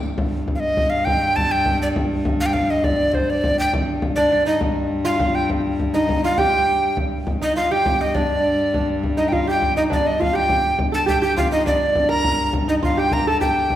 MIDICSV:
0, 0, Header, 1, 6, 480
1, 0, Start_track
1, 0, Key_signature, -2, "minor"
1, 0, Tempo, 295712
1, 278, Time_signature, 6, 3, 24, 8
1, 10836, Tempo, 292683
1, 22448, End_track
2, 0, Start_track
2, 0, Title_t, "Recorder"
2, 0, Program_c, 0, 74
2, 900, Note_on_c, 0, 77, 58
2, 971, Note_on_c, 0, 75, 91
2, 995, Note_off_c, 0, 77, 0
2, 1458, Note_on_c, 0, 77, 88
2, 1482, Note_off_c, 0, 75, 0
2, 1703, Note_on_c, 0, 79, 98
2, 1727, Note_off_c, 0, 77, 0
2, 2209, Note_on_c, 0, 81, 105
2, 2233, Note_off_c, 0, 79, 0
2, 2458, Note_on_c, 0, 79, 100
2, 2482, Note_off_c, 0, 81, 0
2, 2933, Note_off_c, 0, 79, 0
2, 2958, Note_on_c, 0, 74, 75
2, 3055, Note_off_c, 0, 74, 0
2, 3905, Note_on_c, 0, 77, 87
2, 3991, Note_on_c, 0, 79, 74
2, 4016, Note_off_c, 0, 77, 0
2, 4111, Note_on_c, 0, 77, 80
2, 4135, Note_off_c, 0, 79, 0
2, 4389, Note_on_c, 0, 75, 85
2, 4414, Note_off_c, 0, 77, 0
2, 4614, Note_on_c, 0, 74, 84
2, 4638, Note_off_c, 0, 75, 0
2, 5058, Note_off_c, 0, 74, 0
2, 5058, Note_on_c, 0, 74, 58
2, 5104, Note_on_c, 0, 72, 85
2, 5128, Note_off_c, 0, 74, 0
2, 5357, Note_on_c, 0, 74, 93
2, 5381, Note_off_c, 0, 72, 0
2, 5823, Note_off_c, 0, 74, 0
2, 5832, Note_on_c, 0, 79, 91
2, 6044, Note_off_c, 0, 79, 0
2, 6749, Note_on_c, 0, 74, 80
2, 7204, Note_off_c, 0, 74, 0
2, 7239, Note_on_c, 0, 75, 107
2, 7466, Note_off_c, 0, 75, 0
2, 8199, Note_on_c, 0, 77, 92
2, 8685, Note_on_c, 0, 79, 108
2, 8709, Note_off_c, 0, 77, 0
2, 8924, Note_off_c, 0, 79, 0
2, 9641, Note_on_c, 0, 75, 83
2, 10086, Note_off_c, 0, 75, 0
2, 10135, Note_on_c, 0, 77, 94
2, 10357, Note_on_c, 0, 79, 100
2, 10382, Note_off_c, 0, 77, 0
2, 11318, Note_off_c, 0, 79, 0
2, 12065, Note_on_c, 0, 75, 85
2, 12278, Note_off_c, 0, 75, 0
2, 12290, Note_on_c, 0, 77, 89
2, 12545, Note_on_c, 0, 79, 94
2, 12569, Note_off_c, 0, 77, 0
2, 13026, Note_on_c, 0, 75, 84
2, 13051, Note_off_c, 0, 79, 0
2, 13245, Note_on_c, 0, 74, 80
2, 13270, Note_off_c, 0, 75, 0
2, 14449, Note_off_c, 0, 74, 0
2, 14936, Note_on_c, 0, 75, 72
2, 15113, Note_on_c, 0, 79, 58
2, 15138, Note_off_c, 0, 75, 0
2, 15185, Note_on_c, 0, 77, 78
2, 15210, Note_off_c, 0, 79, 0
2, 15418, Note_off_c, 0, 77, 0
2, 15458, Note_on_c, 0, 79, 89
2, 15883, Note_off_c, 0, 79, 0
2, 15908, Note_on_c, 0, 75, 80
2, 16006, Note_off_c, 0, 75, 0
2, 16173, Note_on_c, 0, 74, 74
2, 16399, Note_on_c, 0, 75, 78
2, 16423, Note_off_c, 0, 74, 0
2, 16629, Note_on_c, 0, 77, 93
2, 16654, Note_off_c, 0, 75, 0
2, 16869, Note_on_c, 0, 79, 97
2, 16893, Note_off_c, 0, 77, 0
2, 17579, Note_off_c, 0, 79, 0
2, 17833, Note_on_c, 0, 81, 83
2, 18045, Note_off_c, 0, 81, 0
2, 18058, Note_on_c, 0, 79, 93
2, 18277, Note_off_c, 0, 79, 0
2, 18297, Note_on_c, 0, 79, 91
2, 18516, Note_off_c, 0, 79, 0
2, 18542, Note_on_c, 0, 77, 83
2, 18759, Note_off_c, 0, 77, 0
2, 18777, Note_on_c, 0, 75, 95
2, 18996, Note_off_c, 0, 75, 0
2, 19026, Note_on_c, 0, 74, 88
2, 19720, Note_on_c, 0, 82, 108
2, 19744, Note_off_c, 0, 74, 0
2, 20441, Note_off_c, 0, 82, 0
2, 20700, Note_on_c, 0, 75, 76
2, 20798, Note_off_c, 0, 75, 0
2, 20950, Note_on_c, 0, 77, 85
2, 21196, Note_on_c, 0, 79, 89
2, 21221, Note_off_c, 0, 77, 0
2, 21423, Note_on_c, 0, 82, 92
2, 21448, Note_off_c, 0, 79, 0
2, 21663, Note_on_c, 0, 81, 88
2, 21688, Note_off_c, 0, 82, 0
2, 21870, Note_off_c, 0, 81, 0
2, 21880, Note_on_c, 0, 79, 80
2, 22448, Note_off_c, 0, 79, 0
2, 22448, End_track
3, 0, Start_track
3, 0, Title_t, "Lute"
3, 0, Program_c, 1, 24
3, 6774, Note_on_c, 1, 62, 80
3, 6992, Note_off_c, 1, 62, 0
3, 7011, Note_on_c, 1, 62, 79
3, 7234, Note_off_c, 1, 62, 0
3, 7241, Note_on_c, 1, 63, 73
3, 7467, Note_off_c, 1, 63, 0
3, 8191, Note_on_c, 1, 65, 90
3, 8412, Note_off_c, 1, 65, 0
3, 8431, Note_on_c, 1, 65, 77
3, 8883, Note_off_c, 1, 65, 0
3, 9647, Note_on_c, 1, 63, 72
3, 10129, Note_off_c, 1, 63, 0
3, 10135, Note_on_c, 1, 65, 79
3, 10369, Note_on_c, 1, 67, 74
3, 10373, Note_off_c, 1, 65, 0
3, 11258, Note_off_c, 1, 67, 0
3, 12047, Note_on_c, 1, 63, 66
3, 12290, Note_off_c, 1, 63, 0
3, 12296, Note_on_c, 1, 65, 72
3, 12533, Note_on_c, 1, 67, 85
3, 12537, Note_off_c, 1, 65, 0
3, 13265, Note_on_c, 1, 62, 76
3, 13272, Note_off_c, 1, 67, 0
3, 14212, Note_off_c, 1, 62, 0
3, 14231, Note_on_c, 1, 62, 48
3, 14444, Note_off_c, 1, 62, 0
3, 14929, Note_on_c, 1, 63, 62
3, 15163, Note_off_c, 1, 63, 0
3, 15169, Note_on_c, 1, 65, 61
3, 15417, Note_off_c, 1, 65, 0
3, 15425, Note_on_c, 1, 67, 80
3, 15907, Note_on_c, 1, 63, 72
3, 15912, Note_off_c, 1, 67, 0
3, 16117, Note_off_c, 1, 63, 0
3, 16124, Note_on_c, 1, 62, 67
3, 16602, Note_off_c, 1, 62, 0
3, 16609, Note_on_c, 1, 65, 67
3, 16831, Note_on_c, 1, 67, 75
3, 16857, Note_off_c, 1, 65, 0
3, 17510, Note_off_c, 1, 67, 0
3, 17798, Note_on_c, 1, 69, 69
3, 18021, Note_off_c, 1, 69, 0
3, 18028, Note_on_c, 1, 67, 74
3, 18266, Note_off_c, 1, 67, 0
3, 18286, Note_on_c, 1, 67, 83
3, 18534, Note_off_c, 1, 67, 0
3, 18534, Note_on_c, 1, 65, 70
3, 18776, Note_off_c, 1, 65, 0
3, 18782, Note_on_c, 1, 63, 64
3, 18999, Note_off_c, 1, 63, 0
3, 19010, Note_on_c, 1, 62, 79
3, 19711, Note_on_c, 1, 70, 83
3, 19749, Note_off_c, 1, 62, 0
3, 20385, Note_off_c, 1, 70, 0
3, 20681, Note_on_c, 1, 63, 67
3, 20917, Note_off_c, 1, 63, 0
3, 20923, Note_on_c, 1, 65, 71
3, 21162, Note_on_c, 1, 67, 77
3, 21169, Note_off_c, 1, 65, 0
3, 21397, Note_off_c, 1, 67, 0
3, 21404, Note_on_c, 1, 70, 73
3, 21648, Note_off_c, 1, 70, 0
3, 21655, Note_on_c, 1, 69, 81
3, 21866, Note_off_c, 1, 69, 0
3, 21873, Note_on_c, 1, 67, 72
3, 22448, Note_off_c, 1, 67, 0
3, 22448, End_track
4, 0, Start_track
4, 0, Title_t, "Viola da gamba"
4, 0, Program_c, 2, 42
4, 0, Note_on_c, 2, 43, 70
4, 291, Note_off_c, 2, 43, 0
4, 299, Note_on_c, 2, 43, 68
4, 6053, Note_off_c, 2, 43, 0
4, 6063, Note_on_c, 2, 43, 76
4, 11808, Note_off_c, 2, 43, 0
4, 11838, Note_on_c, 2, 43, 72
4, 17597, Note_off_c, 2, 43, 0
4, 17607, Note_on_c, 2, 43, 63
4, 22448, Note_off_c, 2, 43, 0
4, 22448, End_track
5, 0, Start_track
5, 0, Title_t, "Frame drum"
5, 288, Note_on_c, 9, 64, 88
5, 451, Note_off_c, 9, 64, 0
5, 773, Note_on_c, 9, 64, 70
5, 935, Note_off_c, 9, 64, 0
5, 1002, Note_on_c, 9, 64, 26
5, 1164, Note_off_c, 9, 64, 0
5, 1251, Note_on_c, 9, 64, 69
5, 1414, Note_off_c, 9, 64, 0
5, 1734, Note_on_c, 9, 64, 77
5, 1896, Note_off_c, 9, 64, 0
5, 2221, Note_on_c, 9, 64, 74
5, 2384, Note_off_c, 9, 64, 0
5, 2462, Note_on_c, 9, 64, 25
5, 2625, Note_off_c, 9, 64, 0
5, 2691, Note_on_c, 9, 64, 77
5, 2853, Note_off_c, 9, 64, 0
5, 3181, Note_on_c, 9, 64, 81
5, 3343, Note_off_c, 9, 64, 0
5, 3654, Note_on_c, 9, 64, 86
5, 3816, Note_off_c, 9, 64, 0
5, 3891, Note_on_c, 9, 64, 25
5, 4054, Note_off_c, 9, 64, 0
5, 4120, Note_on_c, 9, 64, 68
5, 4283, Note_off_c, 9, 64, 0
5, 4606, Note_on_c, 9, 64, 86
5, 4769, Note_off_c, 9, 64, 0
5, 4857, Note_on_c, 9, 64, 23
5, 5019, Note_off_c, 9, 64, 0
5, 5085, Note_on_c, 9, 64, 72
5, 5247, Note_off_c, 9, 64, 0
5, 5579, Note_on_c, 9, 64, 81
5, 5741, Note_off_c, 9, 64, 0
5, 6061, Note_on_c, 9, 64, 93
5, 6223, Note_off_c, 9, 64, 0
5, 6529, Note_on_c, 9, 64, 76
5, 6691, Note_off_c, 9, 64, 0
5, 6778, Note_on_c, 9, 64, 25
5, 6941, Note_off_c, 9, 64, 0
5, 7481, Note_on_c, 9, 64, 84
5, 7643, Note_off_c, 9, 64, 0
5, 8203, Note_on_c, 9, 64, 24
5, 8365, Note_off_c, 9, 64, 0
5, 8436, Note_on_c, 9, 64, 77
5, 8598, Note_off_c, 9, 64, 0
5, 8921, Note_on_c, 9, 64, 76
5, 9084, Note_off_c, 9, 64, 0
5, 9406, Note_on_c, 9, 64, 69
5, 9569, Note_off_c, 9, 64, 0
5, 9656, Note_on_c, 9, 64, 24
5, 9818, Note_off_c, 9, 64, 0
5, 9882, Note_on_c, 9, 64, 78
5, 10044, Note_off_c, 9, 64, 0
5, 10348, Note_on_c, 9, 64, 77
5, 10510, Note_off_c, 9, 64, 0
5, 10601, Note_on_c, 9, 64, 25
5, 10764, Note_off_c, 9, 64, 0
5, 11318, Note_on_c, 9, 64, 78
5, 11482, Note_off_c, 9, 64, 0
5, 11804, Note_on_c, 9, 64, 76
5, 11968, Note_off_c, 9, 64, 0
5, 12044, Note_on_c, 9, 64, 25
5, 12208, Note_off_c, 9, 64, 0
5, 12772, Note_on_c, 9, 64, 80
5, 12936, Note_off_c, 9, 64, 0
5, 13250, Note_on_c, 9, 64, 78
5, 13414, Note_off_c, 9, 64, 0
5, 13493, Note_on_c, 9, 64, 25
5, 13657, Note_off_c, 9, 64, 0
5, 14223, Note_on_c, 9, 64, 69
5, 14387, Note_off_c, 9, 64, 0
5, 14704, Note_on_c, 9, 64, 65
5, 14868, Note_off_c, 9, 64, 0
5, 15187, Note_on_c, 9, 64, 64
5, 15351, Note_off_c, 9, 64, 0
5, 15665, Note_on_c, 9, 64, 65
5, 15829, Note_off_c, 9, 64, 0
5, 16152, Note_on_c, 9, 64, 74
5, 16316, Note_off_c, 9, 64, 0
5, 16398, Note_on_c, 9, 64, 24
5, 16562, Note_off_c, 9, 64, 0
5, 16643, Note_on_c, 9, 64, 74
5, 16807, Note_off_c, 9, 64, 0
5, 16876, Note_on_c, 9, 64, 23
5, 17040, Note_off_c, 9, 64, 0
5, 17097, Note_on_c, 9, 64, 81
5, 17261, Note_off_c, 9, 64, 0
5, 17577, Note_on_c, 9, 64, 76
5, 17741, Note_off_c, 9, 64, 0
5, 17826, Note_on_c, 9, 64, 25
5, 17990, Note_off_c, 9, 64, 0
5, 18062, Note_on_c, 9, 64, 73
5, 18226, Note_off_c, 9, 64, 0
5, 18545, Note_on_c, 9, 64, 83
5, 18709, Note_off_c, 9, 64, 0
5, 19023, Note_on_c, 9, 64, 69
5, 19187, Note_off_c, 9, 64, 0
5, 19255, Note_on_c, 9, 64, 25
5, 19419, Note_off_c, 9, 64, 0
5, 19492, Note_on_c, 9, 64, 79
5, 19656, Note_off_c, 9, 64, 0
5, 19964, Note_on_c, 9, 64, 79
5, 20128, Note_off_c, 9, 64, 0
5, 20440, Note_on_c, 9, 64, 84
5, 20604, Note_off_c, 9, 64, 0
5, 20690, Note_on_c, 9, 64, 25
5, 20854, Note_off_c, 9, 64, 0
5, 20922, Note_on_c, 9, 64, 79
5, 21086, Note_off_c, 9, 64, 0
5, 21397, Note_on_c, 9, 64, 77
5, 21561, Note_off_c, 9, 64, 0
5, 21885, Note_on_c, 9, 64, 73
5, 22049, Note_off_c, 9, 64, 0
5, 22361, Note_on_c, 9, 64, 68
5, 22448, Note_off_c, 9, 64, 0
5, 22448, End_track
6, 0, Start_track
6, 0, Title_t, "Riq"
6, 47, Note_on_c, 9, 54, 20
6, 209, Note_off_c, 9, 54, 0
6, 22448, End_track
0, 0, End_of_file